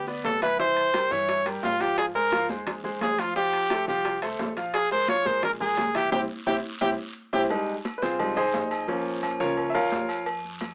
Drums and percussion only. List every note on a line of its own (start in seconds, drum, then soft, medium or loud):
0.07 high bongo soft
0.07 high conga soft
0.24 high bongo soft
0.24 low bongo medium
0.24 high conga medium
0.24 high timbale medium
0.24 low timbale medium
0.24 short guiro medium
0.42 high bongo soft
0.42 high timbale medium
0.42 short guiro medium
0.59 high bongo medium
0.59 high conga soft
0.59 long guiro medium
0.76 high conga soft
0.76 high timbale medium
0.94 high bongo medium
0.94 high conga medium
0.94 high timbale loud
0.94 low timbale medium
0.94 short guiro medium
1.11 high bongo soft
1.11 high conga soft
1.11 short guiro medium
1.29 high bongo medium
1.29 high conga soft
1.29 high timbale medium
1.29 long guiro medium
1.45 high bongo soft
1.45 high conga soft
1.45 high timbale medium
1.63 high bongo soft
1.63 low bongo medium
1.63 high conga medium
1.63 low timbale medium
1.63 short guiro medium
1.80 high bongo soft
1.80 high conga soft
1.80 high timbale medium
1.80 short guiro medium
1.97 high bongo medium
1.97 high conga soft
1.97 high timbale loud
2.15 high conga soft
2.32 high bongo medium
2.32 high conga medium
2.32 high timbale medium
2.32 low timbale medium
2.32 short guiro medium
2.49 high bongo soft
2.49 high conga medium
2.49 short guiro medium
2.67 high bongo medium
2.67 high conga soft
2.67 low conga medium
2.67 high timbale medium
2.67 long guiro medium
2.84 high bongo soft
2.84 high conga soft
2.84 low conga medium
3.01 high bongo soft
3.01 low bongo medium
3.01 high conga medium
3.01 high timbale medium
3.01 low timbale medium
3.01 short guiro medium
3.18 high bongo soft
3.18 high conga medium
3.18 high timbale loud
3.18 short guiro medium
3.35 high bongo medium
3.35 high conga soft
3.35 long guiro medium
3.53 high conga soft
3.53 high timbale medium
3.70 high bongo medium
3.70 high conga medium
3.70 high timbale loud
3.70 low timbale medium
3.70 short guiro medium
3.88 high bongo soft
3.88 high conga soft
3.88 short guiro medium
4.05 high bongo medium
4.05 high conga soft
4.05 high timbale medium
4.05 long guiro medium
4.22 high bongo soft
4.22 high conga soft
4.22 high timbale medium
4.39 high bongo soft
4.39 low bongo medium
4.39 high conga medium
4.39 low timbale medium
4.39 short guiro medium
4.57 high bongo soft
4.57 high timbale medium
4.57 short guiro medium
4.74 high bongo medium
4.74 high conga soft
4.74 high timbale loud
4.74 long guiro medium
4.91 high conga soft
5.08 high bongo medium
5.08 high conga loud
5.08 high timbale medium
5.08 low timbale medium
5.08 short guiro medium
5.26 high bongo soft
5.26 high conga medium
5.26 short guiro medium
5.43 high bongo medium
5.43 high conga soft
5.43 low conga medium
5.43 high timbale medium
5.43 long guiro medium
5.60 high bongo soft
5.60 high conga soft
5.60 low conga medium
5.77 high bongo soft
5.77 low bongo medium
5.77 high conga medium
5.77 high timbale medium
5.77 low timbale medium
5.77 short guiro medium
5.95 high bongo soft
5.95 high timbale loud
5.95 short guiro medium
6.12 high bongo loud
6.12 high conga loud
6.12 high timbale loud
6.12 long guiro medium
6.47 high bongo medium
6.47 high conga loud
6.47 high timbale loud
6.47 long guiro loud
6.81 high bongo medium
6.81 high conga loud
6.81 high timbale loud
6.81 long guiro medium
7.33 high bongo loud
7.33 high conga loud
7.33 high timbale medium
7.33 long guiro medium
7.50 cowbell loud
7.50 low agogo loud
7.50 long guiro medium
7.68 high conga soft
7.85 cowbell medium
7.85 high conga loud
7.85 low timbale medium
7.85 low agogo medium
7.85 short guiro medium
8.02 cowbell medium
8.02 high conga medium
8.02 short guiro medium
8.19 cowbell loud
8.19 high conga soft
8.19 low conga medium
8.19 low agogo loud
8.19 long guiro medium
8.37 high conga soft
8.37 low conga medium
8.37 low agogo medium
8.54 cowbell medium
8.54 high conga loud
8.54 low timbale medium
8.54 short guiro medium
8.71 cowbell medium
8.71 low agogo loud
8.71 short guiro medium
8.88 cowbell loud
8.88 low agogo loud
8.88 long guiro medium
9.06 high conga soft
9.23 cowbell medium
9.23 high conga medium
9.23 low timbale medium
9.23 low agogo loud
9.23 short guiro medium
9.40 cowbell medium
9.40 high conga soft
9.40 short guiro medium
9.57 cowbell loud
9.57 high conga soft
9.57 low agogo medium
9.57 long guiro medium
9.75 high conga soft
9.75 low agogo loud
9.92 cowbell medium
9.92 high conga medium
9.92 low timbale medium
9.92 short guiro medium
10.09 cowbell medium
10.09 low agogo medium
10.09 short guiro medium
10.26 cowbell loud
10.26 high conga soft
10.26 low agogo loud
10.26 long guiro medium
10.44 high conga soft
10.61 cowbell medium
10.61 high conga loud
10.61 low timbale medium
10.61 low agogo medium
10.61 short guiro medium